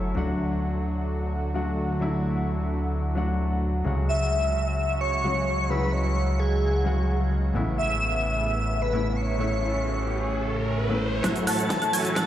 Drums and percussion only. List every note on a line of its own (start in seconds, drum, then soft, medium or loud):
11.24 kick loud
11.24 snare soft
11.24 closed hi-hat medium
11.24 shaker soft
11.36 closed hi-hat soft
11.36 shaker soft
11.47 open hi-hat medium
11.47 shaker medium
11.59 closed hi-hat soft
11.59 shaker soft
11.70 kick loud
11.70 snare soft
11.70 closed hi-hat medium
11.70 shaker soft
11.82 closed hi-hat soft
11.82 shaker soft
11.93 open hi-hat medium
11.93 shaker medium
12.05 closed hi-hat soft
12.05 shaker soft
12.16 kick loud
12.16 snare medium
12.16 closed hi-hat medium
12.16 shaker soft